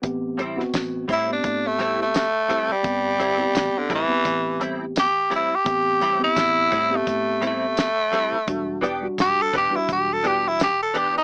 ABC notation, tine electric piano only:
X:1
M:4/4
L:1/16
Q:"Swing 16ths" 1/4=85
K:Ador
V:1 name="Tine electric piano"
[B,CG]2 z [B,CF]3 z [B,CG]4- [B,CG] z4 | [B,CG]2 z [B,CG]3 z [B,CG]4- [B,CG] z4 | [B,CG]2 z [B,CG]3 z [B,CG]4- [B,CG] z4 | [G,DF]2 z [G,DF]3 z [G,DF]4- [G,DF] z4 |]